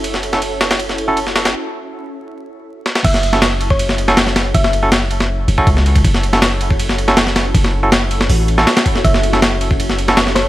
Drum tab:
CC |----------------|----------------|x---------------|----------------|
RD |x-x-x-xxx-x-x-xx|----------------|x-x-x-x-x-x-x-x-|x-x-x-x---x-x-xx|
HH |----------------|----------------|----------------|----------------|
SD |-o-o--oo-o---ooo|--------------oo|-o-oo----o-oooo-|-o--o--o-----o--|
BD |----------------|----------------|o------o--------|o----------oo--o|

CC |----------------|----------------|----------------|
RD |x-x-x-x-x-x-x-x-|x---x-x---x-xxx-|x-x-x-x-x-x-x-x-|
HH |----------------|--------o-------|----------------|
SD |-o-oo----o-oooo-|-o--o--o---ooo-o|-o-oo----o-oooo-|
BD |o------o--------|o-------------o-|o------o--------|